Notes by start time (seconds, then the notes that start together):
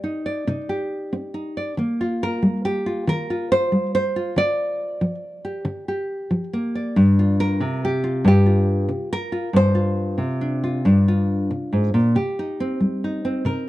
Already playing: C4 G4 D5
0.04 D#4
0.26 D5
0.47 C3 D#4
0.69 G4
1.13 C4
1.34 D#4
1.57 D5
1.77 D#3 A#3
2.01 F4
2.23 A#4
2.43 G3
2.65 G4
2.86 F4
3.07 D#3 A#4
3.30 F4
3.52 C5
3.72 G3
3.95 C5
4.16 F4
4.36 D3 D5
5.01 F3
5.45 G4
5.65 D3
5.88 G4
6.31 F3
6.53 A#3
6.75 D5
6.96 G2
7.19 F4
7.40 A#4
7.60 C3
7.85 G4
8.04 F4
8.25 G2 G4
8.46 F4
8.89 C3
9.13 A#4
9.32 F4
9.53 G2 C5
9.75 F4
10.18 C3
10.41 D4
10.64 F4
10.85 G2 D4
11.08 F4
11.51 C3
11.73 G#2
11.94 A#2
12.15 C3 G4
12.39 D#4
12.60 C4
12.80 G3
13.04 D#4
13.25 C4
13.45 C3 A#4